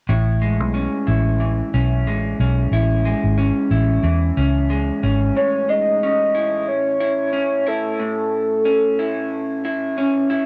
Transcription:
0.09 0.60 A1 medium
0.09 2.73 A2 medium
0.09 1.06 E4 medium
0.42 2.07 G#3 soft
0.60 0.86 B1 medium
0.74 1.73 C#4 medium
1.07 1.61 A1 medium
1.07 2.73 E4 medium
1.40 4.03 E3 medium
1.74 2.06 B1 medium
1.74 2.40 C#4 medium
2.06 2.33 A1 medium
2.06 3.05 G#3 medium
2.40 2.66 B1 medium
2.40 3.37 C#4 medium
2.71 3.13 A1 medium
2.71 3.71 E4 medium
3.05 4.70 G#3 medium
3.24 3.50 G#1 medium
3.38 4.37 C#4 medium
3.71 3.97 A1 medium
3.71 6.34 E4 medium
4.03 4.30 E2 medium
4.03 7.53 E3 medium
4.37 4.90 C#2 medium
4.37 5.03 C#4 medium
4.70 5.69 G#3 medium
5.03 5.30 G#1 medium
5.03 6.03 C#4 medium
5.36 7.98 A2 medium
5.36 5.71 C#5 loud
5.69 6.68 G#3 medium
5.69 6.68 D#5 loud
6.03 7.31 C#4 medium
6.35 6.99 E4 medium
6.68 7.70 C#5 loud
7.00 7.65 E4 medium
7.33 8.64 C#4 medium
7.67 8.98 E4 medium
7.67 9.65 A4 medium
7.99 10.46 A2 medium
8.65 9.96 C#4 medium
8.99 9.64 E4 medium
9.65 10.29 E4 medium
9.98 10.46 C#4 medium
10.30 10.46 E4 medium

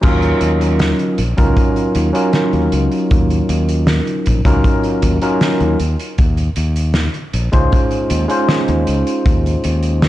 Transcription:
0.01 0.33 D#2 loud
0.01 1.17 F#3 loud
0.01 1.18 C#4 medium
0.01 1.18 D#4 medium
0.01 1.18 F4 medium
0.01 1.19 A#4 loud
0.01 kick loud
0.01 closed hi-hat medium
0.01 crash medium
0.22 closed hi-hat soft
0.41 0.92 D#2 medium
0.41 closed hi-hat loud
0.61 closed hi-hat medium
0.79 snare loud
0.79 closed hi-hat medium
0.99 closed hi-hat soft
1.18 1.33 A#1 medium
1.18 closed hi-hat loud
1.37 1.53 C#2 medium
1.37 2.10 F#3 medium
1.37 2.10 C#4 medium
1.37 2.10 D#4 medium
1.37 2.10 F4 medium
1.37 2.10 A#4 loud
1.37 kick loud
1.37 closed hi-hat medium
1.57 kick loud
1.57 closed hi-hat medium
1.76 closed hi-hat soft
1.95 2.10 D#2 medium
1.95 closed hi-hat medium
2.13 4.40 F#3 medium
2.13 4.40 C#4 medium
2.13 4.40 D#4 medium
2.13 4.41 F4 medium
2.13 4.41 A#4 medium
2.13 closed hi-hat medium
2.33 snare loud
2.33 closed hi-hat medium
2.53 2.68 D#2 loud
2.53 closed hi-hat soft
2.72 2.87 C#2 medium
2.72 closed hi-hat medium
2.91 closed hi-hat medium
3.11 3.40 D#2 loud
3.11 kick loud
3.11 closed hi-hat medium
3.30 closed hi-hat soft
3.49 4.00 D#2 medium
3.49 closed hi-hat medium
3.69 closed hi-hat medium
3.87 snare loud
3.87 closed hi-hat medium
4.07 closed hi-hat soft
4.26 4.41 A#1 medium
4.26 kick medium
4.26 closed hi-hat medium
4.45 4.60 C#2 medium
4.45 5.17 F#3 medium
4.45 5.17 C#4 medium
4.45 5.17 D#4 medium
4.45 5.18 F4 medium
4.45 5.18 A#4 loud
4.45 kick loud
4.45 closed hi-hat medium
4.64 kick loud
4.64 closed hi-hat medium
4.83 closed hi-hat soft
5.02 5.18 D#2 loud
5.02 kick medium
5.02 closed hi-hat loud
5.22 5.77 F#3 medium
5.22 5.77 C#4 medium
5.22 5.77 D#4 medium
5.22 5.78 F4 medium
5.22 5.78 A#4 loud
5.22 closed hi-hat medium
5.41 snare loud
5.41 closed hi-hat medium
5.60 5.75 D#2 loud
5.60 closed hi-hat soft
5.80 5.95 D#2 medium
5.80 closed hi-hat loud
6.00 closed hi-hat medium
6.18 6.48 D#2 loud
6.18 kick loud
6.18 closed hi-hat medium
6.37 closed hi-hat soft
6.56 7.07 D#2 medium
6.56 closed hi-hat loud
6.76 closed hi-hat medium
6.94 snare loud
6.94 closed hi-hat medium
7.14 closed hi-hat soft
7.33 7.48 A#1 medium
7.33 closed hi-hat loud
7.52 7.68 C#2 medium
7.52 8.25 G#3 medium
7.52 8.25 C#4 medium
7.52 8.25 D#4 medium
7.52 8.25 F4 medium
7.52 8.25 C5 loud
7.52 kick loud
7.52 closed hi-hat medium
7.72 kick loud
7.72 closed hi-hat medium
7.91 closed hi-hat soft
8.10 8.25 D#2 loud
8.10 closed hi-hat loud
8.28 10.08 G#3 medium
8.28 10.08 C#4 medium
8.28 10.08 D#4 medium
8.28 10.08 F4 medium
8.28 10.08 C5 medium
8.28 closed hi-hat medium
8.49 snare loud
8.49 closed hi-hat medium
8.68 8.83 D#2 loud
8.68 closed hi-hat soft
8.87 9.02 C#2 medium
8.87 closed hi-hat loud
9.07 closed hi-hat medium
9.26 9.55 D#2 loud
9.26 kick loud
9.26 closed hi-hat medium
9.46 closed hi-hat medium
9.64 10.08 D#2 medium
9.64 closed hi-hat loud
9.83 closed hi-hat medium
10.02 snare loud
10.02 closed hi-hat medium

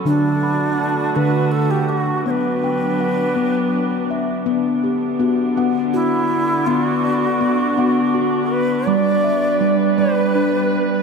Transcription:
0.00 0.42 B5 medium
0.05 1.01 D3 medium
0.05 2.24 D3 medium
0.05 2.24 A3 medium
0.05 0.79 D4 medium
0.05 1.17 D4 medium
0.05 2.24 F#4 medium
0.43 1.53 B5 medium
0.80 1.90 A5 medium
1.16 2.11 D3 medium
1.16 1.90 D4 medium
1.16 1.53 B4 medium
1.51 1.72 A4 medium
1.71 1.90 G4 medium
1.89 2.26 F#4 medium
1.89 2.63 F#5 medium
2.25 4.44 F#3 medium
2.25 4.44 B3 medium
2.25 3.21 B3 medium
2.25 4.44 D4 medium
2.25 2.31 C#5 medium
2.30 4.06 B4 medium
2.64 3.74 G5 medium
3.00 4.10 F#5 soft
3.36 4.31 B3 medium
4.11 4.84 E5 medium
4.45 8.83 D3 medium
4.45 8.83 B3 medium
4.45 5.10 B3 medium
4.45 11.03 D4 medium
4.84 5.94 G4 medium
5.20 5.52 B3 medium
5.20 5.93 F#4 medium
5.57 6.52 B3 medium
5.57 6.68 F#5 medium
5.94 6.68 E4 medium
5.94 6.67 F#4 medium
6.67 7.31 B3 medium
6.67 6.86 F4 medium
6.86 8.53 F#4 medium
7.04 8.14 D5 medium
7.41 7.73 B3 medium
7.41 8.13 F#4 medium
7.77 8.73 B3 loud
7.77 8.88 F#5 medium
8.14 8.88 F#4 medium
8.52 8.89 B4 medium
8.86 11.03 G3 medium
8.86 9.51 G3 loud
8.86 11.03 B4 medium
8.86 10.00 D5 loud
9.24 10.35 E5 medium
9.61 9.93 G3 medium
9.61 10.34 D4 medium
9.98 10.93 G3 medium
9.98 10.81 B4 medium
9.98 11.03 D5 medium
10.35 11.03 D4 medium

